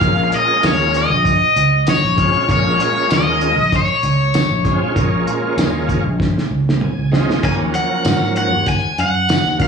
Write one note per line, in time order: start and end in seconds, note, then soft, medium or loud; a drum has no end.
0.00 0.29 A#1 medium
0.00 1.10 G#3 medium
0.00 1.10 A#3 medium
0.00 1.10 C#4 medium
0.00 1.11 F4 medium
0.00 0.29 F5 medium
0.00 kick loud
0.00 closed hi-hat medium
0.32 0.63 D#5 medium
0.32 closed hi-hat medium
0.63 1.12 D#2 medium
0.63 0.97 C#5 medium
0.63 snare loud
0.63 closed hi-hat medium
0.63 tambourine loud
0.94 1.89 D#5 medium
0.94 closed hi-hat medium
1.12 1.39 A#1 medium
1.25 kick medium
1.25 closed hi-hat medium
1.56 1.84 C#2 medium
1.56 closed hi-hat medium
1.87 2.50 C#5 medium
1.87 snare loud
1.87 closed hi-hat medium
1.87 tambourine loud
2.04 2.32 A#1 medium
2.16 2.45 G#3 medium
2.16 2.45 C4 medium
2.16 2.45 C#4 medium
2.16 2.45 F4 medium
2.16 kick medium
2.16 closed hi-hat medium
2.47 2.77 A#1 loud
2.47 3.57 G#3 medium
2.47 3.57 A#3 medium
2.47 3.57 C#4 medium
2.47 3.58 F4 medium
2.47 2.81 C#5 medium
2.47 kick loud
2.47 closed hi-hat medium
2.80 3.13 C#5 medium
2.80 closed hi-hat medium
3.10 3.59 D#2 medium
3.10 3.75 D#5 medium
3.10 snare loud
3.10 closed hi-hat medium
3.10 tambourine loud
3.41 closed hi-hat medium
3.59 3.86 A#1 medium
3.72 5.28 C#5 medium
3.72 kick medium
3.72 closed hi-hat medium
4.03 4.31 C#2 medium
4.03 closed hi-hat medium
4.34 snare loud
4.34 closed hi-hat medium
4.34 tambourine loud
4.51 4.79 A#1 medium
4.64 4.92 G#3 medium
4.64 4.92 C4 medium
4.64 4.93 C#4 medium
4.64 4.93 F4 medium
4.64 kick medium
4.64 closed hi-hat medium
4.94 5.24 A#1 loud
4.94 6.04 G#3 medium
4.94 6.04 A#3 medium
4.94 6.04 C#4 medium
4.94 6.05 F4 medium
4.94 kick loud
4.94 closed hi-hat medium
5.27 6.18 C5 medium
5.27 closed hi-hat medium
5.57 6.05 D#2 medium
5.57 snare loud
5.57 closed hi-hat medium
5.57 tambourine loud
5.89 kick medium
5.89 closed hi-hat medium
6.05 6.33 A#1 medium
6.20 kick medium
6.20 snare medium
6.38 snare medium
6.51 6.78 C#2 medium
6.69 snare medium
6.81 7.10 G#5 medium
6.81 mid tom medium
6.98 7.26 C#2 medium
7.12 7.39 G#3 medium
7.12 7.39 C4 medium
7.12 7.39 C#4 medium
7.12 7.40 F4 medium
7.12 7.41 D#5 medium
7.12 snare medium
7.30 snare medium
7.43 7.71 D#2 medium
7.43 8.52 F3 medium
7.43 8.52 F#3 medium
7.43 8.52 A#3 medium
7.43 8.52 C#4 medium
7.43 7.53 G#5 medium
7.43 kick loud
7.43 closed hi-hat medium
7.43 splash medium
7.74 8.33 F#5 medium
7.74 closed hi-hat medium
8.05 8.53 G#2 medium
8.05 snare loud
8.05 closed hi-hat medium
8.05 tambourine loud
8.36 8.68 F#5 medium
8.36 closed hi-hat medium
8.53 8.81 D#2 medium
8.66 8.97 G#5 loud
8.66 kick medium
8.66 closed hi-hat medium
8.98 9.26 F#2 medium
8.98 9.57 F#5 medium
8.98 closed hi-hat medium
9.29 snare loud
9.29 closed hi-hat medium
9.29 tambourine loud
9.46 9.68 D#2 medium
9.59 9.68 F#3 medium
9.59 9.68 A#3 medium
9.59 9.68 C#4 medium
9.59 9.68 F4 medium
9.59 9.68 F#5 medium
9.59 kick medium
9.59 closed hi-hat medium